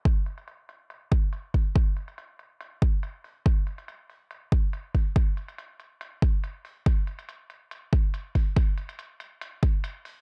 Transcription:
\new DrumStaff \with { instrumentName = "Drums" } \drummode { \time 4/4 \tempo 4 = 141 <hh bd>8 hh16 hh16 hh8 hh8 hh8 <hh bd>8 hh8 <hho bd>8 | <hh bd>8 hh16 hh16 hh8 hh8 hh8 <hh bd>8 hh8 hho8 | <hh bd>8 hh16 hh16 hh8 hho8 hh8 <hh bd>8 hh8 <hho bd>8 | <hh bd>8 hh16 hh16 hh8 hh8 hh8 <hh bd>8 hh8 hho8 |
<hh bd>8 hh16 hh16 hh8 hh8 hh8 <hh bd>8 hh8 <hho bd>8 | <hh bd>8 hh16 hh16 hh8 hh8 hh8 <hh bd>8 hh8 hho8 | }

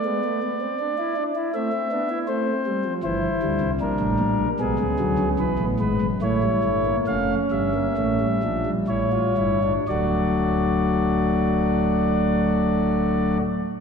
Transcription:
<<
  \new Staff \with { instrumentName = "Pipe organ" } { \time 4/4 \key a \phrygian \tempo 4 = 72 << { d''2 e''4 c''4 | c''4 bes'4 gis'4 b'8 b'8 | cis''4 f''8 e''4. cis''4 | <a fis' d''>1 | } \\ { gis16 a16 b16 c'16 d'16 e'16 d'16 e'16 a16 c'16 d'16 e'16 c'4 | e'4 d'4 b2 | e'4 cis'4 cis'8 d'8 e'16 f'16 e'16 d'16 | d'1 | } >> }
  \new Staff \with { instrumentName = "Pipe organ" } { \clef bass \time 4/4 \key a \phrygian << { b2 c'8 b8 a8 g16 f16 | e8 g4. gis8 fis8 e8 gis8 | a16 g16 a16 bes16 a8 g16 bes16 a16 g16 f16 g4~ g16 | fis1 | } \\ { r1 | <g,, g,>8 <d, d>16 <c, c>16 <bes,, bes,>16 <a,, a,>16 <bes,, bes,>8 <b,, b,>16 <cis, cis>16 <d, d>16 <cis, cis>16 <b,, b,>16 <a,, a,>16 <gis,, gis,>16 <fis,, fis,>16 | <a,, a,>8 <g,, g,>8 <f,, f,>8 <g,, g,>8 <a,, a,>8 <bes,, bes,>8 <a,, a,>8 <g,, g,>8 | <d,, d,>1 | } >> }
>>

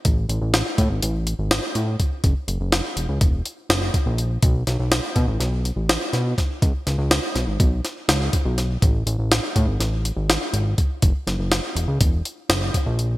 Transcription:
<<
  \new Staff \with { instrumentName = "Analog synth bass" } { \clef bass \time 9/8 \key fis \dorian \tempo 4. = 82 a,,8 a,,16 a,,8 r16 a,16 gis,,16 a,,8. gis,,8 r16 a,8 r8 | fis,,16 r16 fis,,16 fis,,8 r16 e,,16 cis,16 e,,8 r8 fis,,8 r16 ais,,8. | b,,8 b,,16 b,,8 r16 b,16 a,,16 b,,8. a,,8 r16 b,8 r8 | cis,16 r16 cis,16 cis,8 r16 b,,16 gis,,16 b,,8 r8 cis,8 r16 b,,8. |
a,,8 a,,16 a,,8 r16 a,16 gis,,16 a,,8. gis,,8 r16 gis,,8 r8 | fis,,16 r16 fis,,16 fis,,8 r16 e,,16 cis,16 e,,8 r8 fis,,8 r16 ais,,8. | }
  \new DrumStaff \with { instrumentName = "Drums" } \drummode { \time 9/8 <hh bd>8 hh8 <hh sn>8 <hh bd>8 hh8 hh8 <hh sn>8 hh8 <hh bd>8 | <hh bd>8 hh8 <hh sn>8 hh8 <hh bd>8 hh8 <hh sn>8 <hh bd>8 hh8 | <hh bd>8 <hh sn>8 <hh sn>8 <hh bd>8 <hh sn>8 hh8 <hh sn>8 <hh sn>8 <hh bd sn>8 | <hh bd>8 <hh sn>8 <hh sn>8 <hh sn>8 <hh bd>8 <hh sn>8 <hh sn>8 <hh bd>8 <hh sn>8 |
<hh bd>8 hh8 <hh sn>8 <hh bd>8 <hh sn>8 hh8 <hh sn>8 hh8 <hh bd>8 | <hh bd>8 <hh sn>8 <hh sn>8 hh8 <hh bd>8 hh8 <hh sn>8 <hh bd>8 hh8 | }
>>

